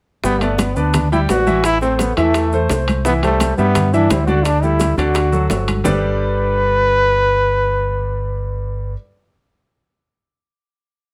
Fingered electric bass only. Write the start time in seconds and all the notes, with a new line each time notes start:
0.24 G1
0.76 D2
1.29 A1
2.17 E2
2.70 C2
3.58 G2
4.10 D2
4.97 D2
5.50 G1
5.86 G1